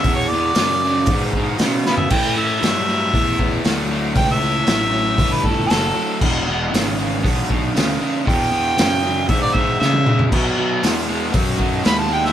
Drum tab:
CC |----------------|x---------------|----------------|x---------------|
HH |o---o---o---o---|o---o---o---o---|o---o---o---o---|----o---o---o---|
SD |----o-------o-o-|----o-------o---|----o-------o---|----o-------o---|
T1 |----------------|----------------|----------------|----------------|
T2 |----------------|----------------|----------------|----------------|
FT |---------------o|----------------|----------------|----------------|
BD |o-------o-o-----|o-------o-o-----|o-------o-o-----|o-------o-o-----|

CC |----------------|x---------------|
HH |o---o---o-------|----o---o---o---|
SD |----o-------o---|----o-------o--o|
T1 |-------------o--|----------------|
T2 |--------------o-|----------------|
FT |---------------o|----------------|
BD |o-------o-o-----|o-------o-o-----|